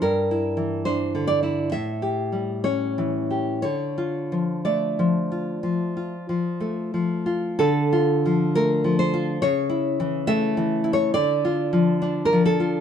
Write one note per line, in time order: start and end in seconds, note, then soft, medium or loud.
0.02 1.69 G2 medium
0.02 0.83 A#4 medium
0.31 1.42 E4 soft
0.57 1.72 E3 soft
0.85 1.73 D4 medium
0.85 1.27 C5 medium
1.15 1.73 D3 medium
1.27 1.42 D5 medium
1.43 1.72 E4 soft
1.72 3.61 A2 medium
1.72 2.62 E5 medium
2.02 3.29 G4 medium
2.32 3.65 G3 soft
2.64 3.63 C#4 soft
2.64 3.60 C#5 medium
2.98 3.65 E3 soft
3.31 3.65 G4 soft
3.62 5.60 D3 medium
3.62 4.61 C#5 medium
3.98 5.30 F4 soft
4.32 4.98 F3 soft
4.65 6.14 A3 soft
4.65 6.58 D5 medium
4.99 5.62 F3 soft
5.32 5.95 F4 soft
5.63 6.28 F3 soft
5.97 7.25 F4 soft
6.29 6.93 F3 soft
6.60 7.59 A3 medium
6.94 7.60 F3 soft
7.26 7.60 F4 soft
7.59 9.37 D3 medium
7.59 8.51 A4 loud
7.93 9.12 F4 medium
8.26 8.83 F3 medium
8.55 9.42 A3 medium
8.55 8.97 A#4 medium
8.84 9.42 F3 medium
8.99 9.40 C5 loud
9.14 9.42 F4 medium
9.42 11.11 C#3 medium
9.42 10.25 C#5 loud
9.70 10.83 E4 medium
10.00 10.56 E3 medium
10.27 11.14 A3 medium
10.27 10.90 E5 loud
10.57 11.14 E3 medium
10.84 11.14 E4 medium
10.93 11.13 C#5 medium
11.14 12.80 D3 medium
11.14 12.20 D5 loud
11.45 12.59 F4 medium
11.73 12.32 F3 medium
12.02 12.80 D4 medium
12.25 12.45 A#4 medium
12.33 12.80 F3 medium
12.46 12.80 A4 medium
12.60 12.80 F4 medium